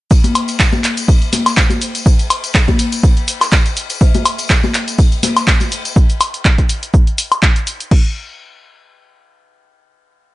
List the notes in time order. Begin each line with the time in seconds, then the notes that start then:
0.11 kick, ride, tambourine, shaker
0.23 closed hi-hat, ride, tambourine, high conga, shaker
0.35 open hi-hat, ride, high woodblock, shaker
0.48 closed hi-hat, ride, tambourine, shaker
0.59 kick, snare, clap, ride, tambourine, shaker
0.73 ride, tambourine, high conga
0.84 clap, open hi-hat, ride, shaker
0.97 closed hi-hat, ride, tambourine, shaker
1.08 kick, ride, tambourine, shaker
1.22 closed hi-hat, tambourine
1.32 snare, open hi-hat, ride, high conga, shaker
1.46 snare, closed hi-hat, tambourine, high woodblock, shaker
1.57 kick, snare, clap, ride, tambourine, shaker
1.70 closed hi-hat, tambourine, high conga, shaker
1.82 open hi-hat, ride, shaker
1.95 closed hi-hat, ride, tambourine, shaker
2.06 kick, ride, tambourine, shaker
2.19 closed hi-hat, tambourine, shaker
2.30 open hi-hat, ride, high woodblock, shaker
2.44 closed hi-hat, tambourine, shaker
2.55 kick, snare, clap, ride, tambourine, shaker
2.68 kick, tambourine, high conga
2.79 open hi-hat, ride, shaker
2.92 closed hi-hat, tambourine, shaker
3.03 kick, ride, tambourine, shaker
3.17 closed hi-hat, tambourine
3.28 open hi-hat, ride, shaker
3.41 snare, closed hi-hat, tambourine, high woodblock, shaker
3.52 kick, snare, clap, ride, tambourine, shaker
3.66 closed hi-hat, tambourine, shaker
3.77 open hi-hat, ride, shaker
3.90 closed hi-hat, ride, tambourine, shaker
4.01 kick, ride, tambourine, shaker
4.14 closed hi-hat, ride, tambourine, high conga, shaker
4.25 open hi-hat, ride, high woodblock, shaker
4.38 closed hi-hat, ride, tambourine, shaker
4.50 kick, snare, clap, ride, tambourine, shaker
4.63 ride, tambourine, high conga
4.74 clap, open hi-hat, ride, shaker
4.88 closed hi-hat, ride, tambourine, shaker
4.98 kick, ride, tambourine, shaker
5.12 closed hi-hat, tambourine
5.23 snare, open hi-hat, ride, high conga, shaker
5.36 snare, closed hi-hat, tambourine, high woodblock, shaker
5.47 kick, snare, clap, ride, tambourine, shaker
5.60 closed hi-hat, tambourine, high conga, shaker
5.72 open hi-hat, ride, shaker
5.85 closed hi-hat, ride, tambourine, shaker
5.96 kick, shaker
6.10 closed hi-hat, shaker
6.21 open hi-hat, high woodblock, shaker
6.34 closed hi-hat, shaker
6.45 kick, clap, shaker
6.58 kick, closed hi-hat
6.69 open hi-hat, shaker
6.83 closed hi-hat, shaker
6.94 kick, shaker
7.07 closed hi-hat
7.18 open hi-hat, shaker
7.32 closed hi-hat, high woodblock, shaker
7.43 kick, clap, shaker
7.56 closed hi-hat, shaker
7.67 open hi-hat, shaker
7.80 closed hi-hat, shaker
7.91 kick, crash